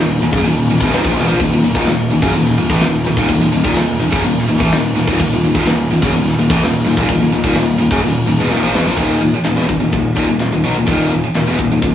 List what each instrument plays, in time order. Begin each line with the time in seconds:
Already playing: distorted electric guitar D#2 A#2
0.00 picked electric bass D#1
0.19 picked electric bass D#1, distorted electric guitar D#2 A#2, crash
0.31 picked electric bass F#1, distorted electric guitar F#2 C#3, kick
0.42 picked electric bass D#1, distorted electric guitar D#2 A#2, crash
0.47 distorted electric guitar D#2 A#2
0.66 distorted electric guitar D#2 A#2, crash
0.71 picked electric bass D#1, distorted electric guitar D#2 A#2
0.78 picked electric bass E1, distorted electric guitar E2 B2, kick
0.82 distorted electric guitar E2 B2
0.91 picked electric bass D#1, distorted electric guitar D#2 A#2, snare, crash
0.95 distorted electric guitar D#2 A#2
1.01 distorted electric guitar A#2 F3, kick
1.05 picked electric bass A#1, distorted electric guitar A#2 F3
1.13 distorted electric guitar E2 B2
1.17 picked electric bass E1, distorted electric guitar E2 B2, snare, crash
1.25 picked electric bass A#1, distorted electric guitar A#2 F3
1.30 distorted electric guitar A#2
1.38 picked electric bass D#1, distorted electric guitar D#2 A#2, kick, crash
1.50 picked electric bass D#1, distorted electric guitar D#2 A#2
1.62 picked electric bass D#1, distorted electric guitar D#2 A#2, crash
1.74 picked electric bass D#1, distorted electric guitar D#2 A#2, kick
1.86 picked electric bass D#1, distorted electric guitar D#2 A#2, snare, crash
2.10 picked electric bass D#1, distorted electric guitar D#2 A#2, crash
2.21 picked electric bass F#1, distorted electric guitar F#2 C#3, kick
2.33 distorted electric guitar D#2 A#2, crash
2.38 picked electric bass D#1
2.46 snare
2.57 distorted electric guitar D#2 A#2, crash
2.61 picked electric bass D#1
2.69 picked electric bass A1, distorted electric guitar A2 E3, kick
2.81 distorted electric guitar D#2 A#2, snare, crash
2.85 picked electric bass D#1
3.04 distorted electric guitar D#2 A#2, snare, crash
3.09 picked electric bass D#1
3.17 picked electric bass D#1, distorted electric guitar D#2 A#2, kick
3.28 picked electric bass D#1, distorted electric guitar D#2 A#2, kick, crash
3.42 picked electric bass D#1, distorted electric guitar D#2 A#2
3.52 picked electric bass D#1, distorted electric guitar D#2 A#2, crash
3.64 picked electric bass D#1, distorted electric guitar D#2 A#2, kick
3.76 picked electric bass D#1, distorted electric guitar D#2 A#2, snare, crash
4.00 picked electric bass D#1, distorted electric guitar D#2 A#2, crash
4.12 picked electric bass F#1, distorted electric guitar F#2 C#3, kick
4.24 picked electric bass D#1, distorted electric guitar D#2 A#2, crash
4.38 snare
4.49 picked electric bass D#1, distorted electric guitar D#2 A#2, crash
4.58 picked electric bass A1, distorted electric guitar A2 E3, kick
4.62 distorted electric guitar A2 E3
4.72 picked electric bass D#1, distorted electric guitar D#2 A#2, snare, crash
4.96 picked electric bass D#1, distorted electric guitar D#2 A#2, snare, crash
5.08 picked electric bass D#1, distorted electric guitar D#2 A#2, kick
5.20 picked electric bass D#1, distorted electric guitar D#2 A#2, kick, crash
5.32 picked electric bass D#1, distorted electric guitar D#2 A#2
5.44 picked electric bass D#1, distorted electric guitar D#2 A#2, crash
5.55 picked electric bass D#1, distorted electric guitar D#2 A#2, kick
5.66 picked electric bass D#1, distorted electric guitar D#2 A#2, snare, crash
5.90 picked electric bass D#1, distorted electric guitar D#2 A#2, crash
6.02 picked electric bass F#1, distorted electric guitar F#2 C#3, kick
6.14 picked electric bass D#1, distorted electric guitar D#2 A#2, crash
6.28 snare
6.38 picked electric bass D#1, distorted electric guitar D#2 A#2, crash
6.50 picked electric bass A1, distorted electric guitar A2 E3, kick
6.62 picked electric bass D#1, distorted electric guitar D#2 A#2, snare, crash
6.85 picked electric bass D#1, distorted electric guitar D#2 A#2, snare, crash
6.97 picked electric bass D#1, distorted electric guitar D#2 A#2, kick
7.09 picked electric bass D#1, distorted electric guitar D#2 A#2, kick, crash
7.20 picked electric bass D#1, distorted electric guitar D#2 A#2
7.32 picked electric bass D#1, distorted electric guitar D#2 A#2, crash
7.44 picked electric bass D#1, distorted electric guitar D#2 A#2, kick
7.55 picked electric bass D#1, distorted electric guitar D#2 A#2, snare, crash
7.80 picked electric bass D#1, distorted electric guitar D#2 A#2, crash
7.91 picked electric bass F#1, distorted electric guitar F#2 C#3, kick
8.02 picked electric bass D#1, distorted electric guitar D#2 A#2, crash
8.26 picked electric bass D#1, distorted electric guitar D#2 A#2, crash
8.38 picked electric bass E1, distorted electric guitar E2 B2
8.50 picked electric bass D#1, distorted electric guitar D#2 A#2, snare
8.62 picked electric bass A#1, distorted electric guitar A#2 F3
8.73 picked electric bass E1, distorted electric guitar E2 B2, snare
8.86 picked electric bass A#1, distorted electric guitar A#2 F3, snare
8.96 picked electric bass D#1, distorted electric guitar D#2 A#2 D#3, kick, crash
9.21 picked electric bass D#1, distorted electric guitar D#2 A#2, ride
9.35 muted picked electric bass stroke, muted distorted electric guitar stroke
9.44 picked electric bass D#1, distorted electric guitar D#2 A#2, snare, ride
9.55 picked electric bass E1, distorted electric guitar E2 B2
9.68 picked electric bass D#1, distorted electric guitar D#2 A#2, kick, ride
9.80 picked electric bass D#1, distorted electric guitar D#2 A#2
9.91 picked electric bass D#1, distorted electric guitar D#2 A#2, kick, ride
10.15 picked electric bass D#1, distorted electric guitar D#2 A#2, kick, ride
10.28 picked electric bass D#1, distorted electric guitar D#2 A#2
10.39 snare, ride
10.53 picked electric bass D#1, distorted electric guitar D#2 A#2
10.64 picked electric bass B1, distorted electric guitar B2 F#3, ride
10.77 picked electric bass D#1, distorted electric guitar D#2 A#2
10.86 picked electric bass D#1, distorted electric guitar D#2 A#2 D#3, kick, ride
11.10 picked electric bass D#1, distorted electric guitar D#2 A#2, ride
11.24 muted distorted electric guitar stroke, muted picked electric bass stroke
11.34 picked electric bass D#1, distorted electric guitar D#2 A#2, snare, ride
11.46 picked electric bass E1, distorted electric guitar E2 B2
11.58 picked electric bass D#1, distorted electric guitar D#2 A#2, kick, ride
11.71 picked electric bass D#1, distorted electric guitar D#2 A#2
11.82 picked electric bass D#1, distorted electric guitar D#2 A#2, kick, ride